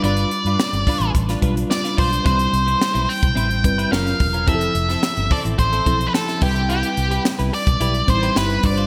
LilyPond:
<<
  \new Staff \with { instrumentName = "Lead electric guitar" } { \time 4/4 \key c \major \tempo 4 = 108 d''2 r4 d''8 c''8 | c''4. g''4. eis''4 | e''4. d''8 c''8.~ c''32 b'32 a'8 g'8 | g'4 r8 d''4 c''8 b'8 d''8 | }
  \new Staff \with { instrumentName = "Clean electric guitar" } { \time 4/4 \key c \major <d' f' b'>8 r16 <d' f' b'>16 r8 <d' f' b'>16 <d' f' b'>16 r16 <d' f' b'>16 <d' f' b'>16 r8 <d' f' b'>16 <d' f' b'>16 r16 | <c' e' b'>16 r8 <c' e' b'>16 r16 <c' e' b'>16 r8 <c' e' b'>16 r8 <c' e' b'>16 <cis' eis' ais'>16 r8 <cis' eis' ais'>16 | <c' e' a'>8 r16 <c' e' a'>16 r8 <c' e' a'>16 <c' e' a'>16 r16 <c' e' a'>16 <c' e' a'>16 r8 <c' e' a'>16 <e' g' b'>16 r16 | <e' g' b'>16 r8 <e' g' b'>16 r16 <e' g' b'>16 r8 <e' g' b'>16 r8 <e' g' b'>16 <e' g' b'>16 r8 <d' f' c''>16 | }
  \new Staff \with { instrumentName = "Tine electric piano" } { \time 4/4 \key c \major <g d' f' b'>4 r4. <g d' f' b'>4 r8 | <g c' e' c''>4. r4 <g c' e' b'>8 <fis cis' eis' ais'>4 | <f c' e' g' a'>4. r4 <f c' e' a'>4 <g c' e' b'>8~ | <g c' e' b'>4 r4. <g c' ees' e' c''>4 <g d' f' b' c''>8 | }
  \new Staff \with { instrumentName = "Fingered electric bass" } { \clef bass \time 4/4 \key c \major g,,8 r16 g,16 r16 g,,16 r16 a,,16 a,,8 b,,8 r8 b,,8 | c,8 c,8 r16 b,,16 r16 b,,16 a,,8 g,,8 fis,,8 e,,8 | f,,8 f,,8 r16 g,,16 r16 a,,16 a,,8 b,,8 r8 c,8~ | c,8 c,8 r16 c,16 r16 b,,16 b,,8 a,,8 g,,8 g,,8 | }
  \new DrumStaff \with { instrumentName = "Drums" } \drummode { \time 4/4 hh16 hh16 hh16 hh16 sn16 hh16 <hho bd>16 hh16 <hh bd>16 <hh sn>16 <hh bd>16 hh16 sn16 <hh sn>16 <hho bd>16 hh16 | <hh bd>16 hh16 hh16 hh16 sn16 hh16 hho16 <hh bd>16 hh16 hh16 <hh bd>16 hh16 sn16 <hh sn>16 <hho bd>16 hh16 | <hh bd>16 hh16 hh16 <hh sn>16 sn16 hh16 <hho bd>16 hh16 <hh bd>16 hh16 <hh bd>16 hh16 sn16 <hh sn>16 <hho bd>16 hh16 | hh16 hh16 hh16 hh16 sn16 hh16 hho16 <hh bd>16 hh16 hh16 <hh bd>16 hh16 sn16 hh16 <hho bd>16 hh16 | }
>>